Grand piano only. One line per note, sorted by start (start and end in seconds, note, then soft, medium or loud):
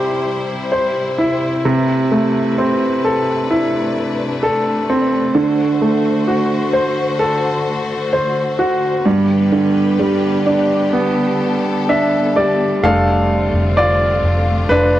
0.00 1.61 C3 medium
0.00 0.20 G3 soft
0.00 0.67 E4 soft
0.00 1.61 G4 soft
0.00 0.70 C5 soft
0.72 1.62 C5 soft
1.18 1.63 E4 soft
1.65 5.32 C3 medium
2.11 3.93 A3 soft
2.58 4.39 C4 soft
3.05 4.41 A4 soft
3.51 5.31 E4 soft
4.43 5.33 A4 medium
4.90 5.34 C4 soft
5.35 9.01 D3 medium
5.81 7.62 A3 soft
6.28 8.09 F#4 soft
6.73 8.11 C5 soft
7.19 9.01 A4 soft
8.13 9.03 C5 soft
8.59 9.04 F#4 soft
9.06 12.79 G2 medium
9.52 11.37 D3 soft
9.99 11.85 G3 soft
10.46 11.88 D4 soft
10.93 12.79 B3 soft
11.89 12.81 D4 soft
11.89 12.33 E5 medium
12.36 12.82 G3 soft
12.36 12.80 D5 medium
12.83 14.20 G3 soft
12.83 14.20 A3 soft
12.83 14.20 D4 soft
12.83 13.74 A4 medium
12.83 13.73 F5 medium
13.77 14.67 F4 medium
13.77 14.73 D5 medium
14.69 15.00 D4 medium
14.69 15.00 B4 medium